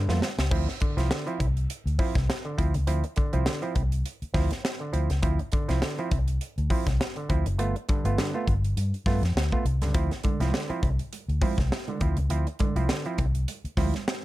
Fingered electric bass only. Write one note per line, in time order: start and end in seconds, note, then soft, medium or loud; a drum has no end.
0.08 0.20 F2 medium
0.38 0.49 C#2 medium
0.52 0.66 D2 loud
0.97 1.08 C2 medium
1.40 1.66 C2 loud
1.86 1.97 D2 loud
2.15 2.27 C2 loud
2.59 2.76 D2 loud
2.74 2.86 C#2 medium
2.87 3.02 D2 loud
3.34 3.45 C2 loud
3.76 4.02 C2 loud
4.22 muted fingered electric bass stroke soft
4.34 4.49 D2 loud
4.94 5.08 D2 medium
5.10 5.21 C#2 medium
5.23 5.38 D2 loud
5.69 5.81 C2 medium
6.12 6.37 C2 loud
6.58 6.69 D2 loud
6.86 6.98 C2 loud
7.30 7.44 D2 medium
7.46 7.58 F#1 medium
7.58 7.73 G1 loud
8.04 8.16 G1 medium
8.47 8.73 G1 medium
8.77 8.91 G2 loud
9.06 9.21 G2 loud
9.22 9.34 F2 loud
9.36 9.50 D2 medium
9.65 9.81 C2 loud
9.81 9.93 C#2 medium
9.95 10.09 D2 loud
10.40 10.51 C2 loud
10.70 muted fingered electric bass stroke soft
10.83 10.97 C2 loud
11.28 11.40 D2 loud
11.58 11.69 C2 loud
12.01 12.18 D2 medium
12.17 12.28 C#2 medium
12.29 12.44 D2 loud
12.76 12.87 C2 loud
13.19 13.44 C2 medium
13.64 muted fingered electric bass stroke medium
13.77 13.92 D2 loud